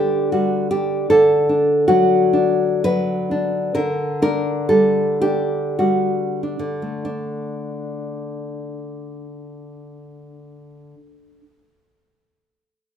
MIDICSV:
0, 0, Header, 1, 2, 480
1, 0, Start_track
1, 0, Key_signature, 2, "major"
1, 0, Tempo, 780234
1, 672, Time_signature, 3, 2, 24, 8
1, 1158, Tempo, 936037
1, 2598, Tempo, 1084991
1, 3078, Tempo, 1257862
1, 3558, Tempo, 1056338
1, 6255, End_track
2, 0, Start_track
2, 0, Title_t, "Nylon-string guitar"
2, 0, Program_c, 0, 24
2, 0, Note_on_c, 0, 50, 45
2, 0, Note_on_c, 0, 55, 36
2, 0, Note_on_c, 0, 62, 41
2, 0, Note_on_c, 0, 67, 64
2, 184, Note_off_c, 0, 67, 0
2, 197, Note_off_c, 0, 55, 0
2, 198, Note_on_c, 0, 66, 59
2, 204, Note_on_c, 0, 55, 39
2, 425, Note_off_c, 0, 66, 0
2, 432, Note_off_c, 0, 62, 0
2, 435, Note_on_c, 0, 67, 61
2, 439, Note_on_c, 0, 62, 39
2, 649, Note_off_c, 0, 50, 0
2, 664, Note_off_c, 0, 67, 0
2, 675, Note_off_c, 0, 62, 0
2, 676, Note_on_c, 0, 69, 69
2, 677, Note_off_c, 0, 55, 0
2, 682, Note_on_c, 0, 50, 47
2, 918, Note_on_c, 0, 62, 42
2, 1141, Note_off_c, 0, 69, 0
2, 1155, Note_on_c, 0, 66, 68
2, 1161, Note_on_c, 0, 54, 40
2, 1383, Note_off_c, 0, 62, 0
2, 1389, Note_on_c, 0, 62, 43
2, 1626, Note_off_c, 0, 66, 0
2, 1649, Note_off_c, 0, 54, 0
2, 1650, Note_on_c, 0, 71, 81
2, 1655, Note_on_c, 0, 54, 40
2, 1885, Note_off_c, 0, 62, 0
2, 1891, Note_on_c, 0, 62, 40
2, 2096, Note_off_c, 0, 50, 0
2, 2096, Note_off_c, 0, 71, 0
2, 2114, Note_on_c, 0, 70, 64
2, 2115, Note_off_c, 0, 54, 0
2, 2117, Note_off_c, 0, 62, 0
2, 2117, Note_on_c, 0, 50, 54
2, 2342, Note_off_c, 0, 70, 0
2, 2357, Note_on_c, 0, 62, 45
2, 2359, Note_on_c, 0, 70, 74
2, 2592, Note_off_c, 0, 70, 0
2, 2597, Note_on_c, 0, 69, 70
2, 2602, Note_on_c, 0, 55, 40
2, 2816, Note_off_c, 0, 69, 0
2, 2827, Note_off_c, 0, 62, 0
2, 2830, Note_on_c, 0, 67, 68
2, 2832, Note_on_c, 0, 62, 39
2, 3070, Note_off_c, 0, 67, 0
2, 3081, Note_off_c, 0, 55, 0
2, 3083, Note_on_c, 0, 66, 53
2, 3086, Note_on_c, 0, 55, 35
2, 3317, Note_off_c, 0, 66, 0
2, 3323, Note_off_c, 0, 62, 0
2, 3328, Note_on_c, 0, 62, 31
2, 3386, Note_off_c, 0, 50, 0
2, 3390, Note_on_c, 0, 50, 38
2, 3476, Note_off_c, 0, 55, 0
2, 3477, Note_on_c, 0, 57, 32
2, 3560, Note_off_c, 0, 62, 0
2, 3565, Note_on_c, 0, 62, 39
2, 5332, Note_off_c, 0, 50, 0
2, 5436, Note_off_c, 0, 57, 0
2, 5539, Note_off_c, 0, 62, 0
2, 6255, End_track
0, 0, End_of_file